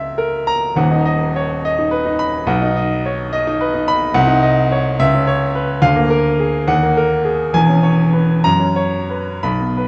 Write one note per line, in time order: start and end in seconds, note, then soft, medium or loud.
0.00 0.71 C#2 medium
0.00 0.77 D#5 soft
0.00 0.77 E5 medium
0.00 0.76 F#5 medium
0.18 0.64 A#4 medium
0.47 0.76 A#5 medium
0.76 2.44 D#1 medium
0.76 2.45 D#2 medium
0.76 1.23 F#5 medium
0.91 1.14 D#4 medium
1.06 1.52 D#5 medium
1.36 1.64 C#5 medium
1.65 2.09 D#5 medium
1.79 2.00 D#4 medium
1.91 2.36 B4 medium
2.05 2.28 D#4 medium
2.19 2.48 B5 medium
2.47 4.12 B1 medium
2.47 2.93 F#5 medium
2.62 2.85 D#4 medium
2.77 3.22 D#5 medium
3.06 3.34 C#5 medium
3.33 3.77 D#5 medium
3.47 3.69 D#4 medium
3.61 4.05 B4 medium
3.74 3.97 D#4 medium
3.88 4.16 B5 loud
4.14 4.97 C2 loud
4.14 4.61 F#5 loud
4.27 4.51 D#4 medium
4.43 4.89 D#5 medium
4.72 5.00 C#5 medium
4.99 5.80 C#2 loud
4.99 5.44 E5 loud
5.14 5.36 C#4 medium
5.27 5.71 C#5 medium
5.55 5.83 B4 medium
5.82 6.67 D2 medium
5.82 6.28 F5 loud
5.96 6.19 A#3 medium
6.10 6.58 A#4 medium
6.39 6.70 G#4 medium
6.68 7.52 D#2 medium
6.68 7.14 F#5 loud
6.83 7.06 A#3 medium
6.97 7.43 A#4 medium
7.25 7.54 G#4 medium
7.53 8.41 E1 medium
7.53 8.42 E2 medium
7.53 8.02 G#5 loud
7.69 7.93 C#4 medium
7.83 8.32 C#5 medium
8.13 8.44 B4 medium
8.44 9.41 F#2 medium
8.44 8.97 A#5 loud
8.60 8.87 C#4 medium
8.76 9.30 C#5 medium
9.10 9.44 B4 soft
9.43 9.88 B1 medium
9.43 9.88 B5 medium
9.60 9.88 B3 soft
9.77 9.88 B4 medium